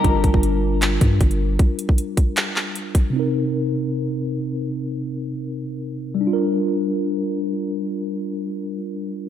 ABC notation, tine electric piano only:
X:1
M:4/4
L:1/8
Q:1/4=155
K:Gm
V:1 name="Tine electric piano"
[G,DFB]8- | [G,DFB]8 | [C,CEB]8- | [C,CEB]8 |
[G,DFB]8- | [G,DFB]8 |]